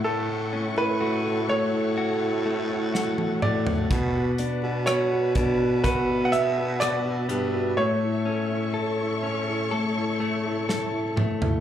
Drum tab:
HH |----------------|x-x-x-x-x-x-x-x-|----------------|
SD |------------o---|----r-------r---|------------o---|
T1 |-------------o--|----------------|----------------|
T2 |--------------o-|----------------|--------------o-|
FT |---------------o|----------------|---------------o|
BD |----------------|o-----o-o-------|----------------|